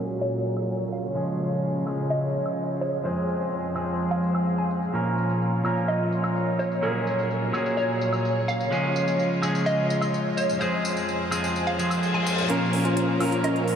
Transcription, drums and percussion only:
0.10 tambourine
0.22 tambourine
0.45 tambourine
0.57 tambourine, high woodblock
0.69 tambourine
0.93 tambourine
1.04 tambourine
1.16 tambourine
1.40 tambourine
1.52 tambourine
1.64 tambourine
1.87 tambourine, high woodblock
1.99 tambourine
2.11 tambourine
2.34 tambourine
2.46 tambourine, high woodblock
2.58 tambourine
2.82 tambourine
2.94 tambourine
3.05 tambourine
3.29 tambourine
3.41 tambourine
3.53 tambourine
3.76 tambourine, high woodblock
3.88 tambourine
4.00 tambourine
4.23 tambourine
4.35 tambourine, high woodblock
4.47 tambourine
4.71 tambourine
4.83 tambourine
4.94 tambourine
5.18 tambourine
5.30 tambourine
5.42 tambourine
5.65 tambourine, high woodblock
5.77 tambourine
5.89 tambourine
6.13 tambourine
6.24 tambourine, high woodblock
6.36 tambourine
6.60 tambourine
6.72 tambourine
6.83 tambourine
7.07 tambourine
7.19 tambourine
7.31 tambourine
7.54 tambourine, high woodblock
7.66 tambourine
7.78 tambourine
8.01 tambourine
8.13 tambourine, high woodblock
8.25 tambourine
8.49 tambourine
8.60 tambourine
8.72 tambourine
8.96 tambourine
9.08 tambourine
9.19 tambourine
9.42 tambourine, high woodblock
9.55 tambourine
9.67 tambourine
9.90 tambourine
10.02 tambourine, high woodblock
10.14 tambourine
10.38 tambourine
10.49 tambourine
10.61 tambourine
10.85 tambourine
10.97 tambourine
11.08 tambourine
11.31 tambourine, high woodblock
11.44 tambourine
11.56 tambourine
11.79 tambourine
11.90 tambourine, high woodblock
12.03 tambourine
12.27 tambourine
12.38 tambourine
12.50 closed hi-hat
12.73 open hi-hat
12.85 closed hi-hat
12.97 closed hi-hat
13.20 open hi-hat, high woodblock
13.32 closed hi-hat
13.44 closed hi-hat
13.56 closed hi-hat
13.68 open hi-hat

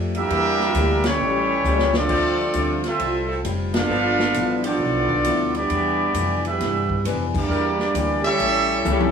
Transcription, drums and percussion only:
0.15 ride
0.30 ride
0.60 snare
0.74 hi-hat pedal, ride
1.04 snare, ride
1.64 hi-hat pedal
1.79 snare
1.93 snare
2.09 kick, crash
2.53 hi-hat pedal, ride
2.84 snare, ride
2.99 ride
3.45 hi-hat pedal, ride
3.74 snare, ride
4.19 snare
4.34 hi-hat pedal, ride
4.64 ride
5.09 kick
5.24 hi-hat pedal, ride
5.54 ride
5.70 ride
6.14 hi-hat pedal, ride
6.45 ride
6.60 snare, ride
6.90 kick
7.05 hi-hat pedal, ride
7.34 kick, crash
7.79 snare
7.95 hi-hat pedal, ride
8.24 ride
8.40 ride
8.85 hi-hat pedal, high tom
9.00 high tom

